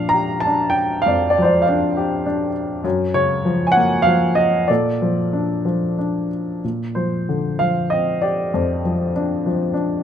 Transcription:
Already playing: A#2 F3 D4 F5
0.09 A#5
0.14 G4
0.40 A5
0.46 D4
0.70 G5
1.02 F5
1.06 F2 D5
1.30 D5
1.38 F3 C5
1.45 D5
1.62 F5
1.66 D4 D5
1.97 G4
2.26 D4
2.84 F#2
3.14 C#3 C#5
3.45 F3
3.67 G#5
3.72 F#5
3.77 A#3
4.02 F5
4.07 F3
4.35 D#5
4.68 A#2 A4 D5
5.02 F3
5.33 D4
5.65 F3
5.99 D4
6.64 A#2
6.95 F3 C5
7.29 D3
7.59 F3 F5
7.90 C4 D#5
8.22 G4 D5
8.54 F2
8.85 F3
9.16 D4
9.46 F3
9.74 D4

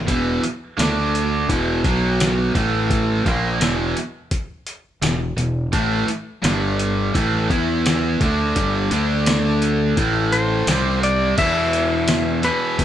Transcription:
0.07 E1 E2 B2 E3, kick, closed hi-hat
0.42 muted overdriven electric guitar stroke, muted fingered electric bass stroke, closed hi-hat
0.78 D2 D3 A3 D4, snare, closed hi-hat, tambourine
1.15 closed hi-hat
1.49 E1 E2 B2 E3, kick, closed hi-hat
1.83 B1 B2 F#3 B3, kick, closed hi-hat
2.20 snare, closed hi-hat, tambourine
2.55 A1 A2 E3 A3, kick, closed hi-hat
2.90 kick, closed hi-hat
3.25 A#1 A#2 F3 A#3, kick, closed hi-hat
3.60 E1 E2 B2 E3, snare, closed hi-hat, tambourine
3.97 closed hi-hat
4.31 kick, closed hi-hat
4.67 closed hi-hat
5.02 E1 E2 B2, snare, closed hi-hat, tambourine
5.37 E1 E2 B2, closed hi-hat
5.73 A1 A2 E3 A3, kick, closed hi-hat
6.08 muted overdriven electric guitar stroke, muted fingered electric bass stroke, closed hi-hat
6.42 G1 G2 D3 G3, snare, closed hi-hat, tambourine
6.79 closed hi-hat
7.13 A1 A2 E3 A3, kick, closed hi-hat
7.49 E2 E3 B3 E4, kick, closed hi-hat
7.86 snare, closed hi-hat, tambourine
8.20 D2 D3 A3 D4, kick, closed hi-hat
8.55 G1 G2 D3 G3, kick, closed hi-hat
8.91 D2 D3 A3 D4, closed hi-hat
9.26 snare, closed hi-hat, tambourine
9.62 closed hi-hat
9.97 A1 A2 E3 A3, kick, closed hi-hat
10.32 C5, closed hi-hat
10.67 C2 C3 G3 C4, snare, closed hi-hat, tambourine
11.03 D5, closed hi-hat
11.37 E2 B2 E3 E5, kick, closed hi-hat, crash
11.73 closed hi-hat
12.08 snare, closed hi-hat, tambourine
12.42 E2 B2 E3 B4, closed hi-hat
12.79 E2, kick, closed hi-hat

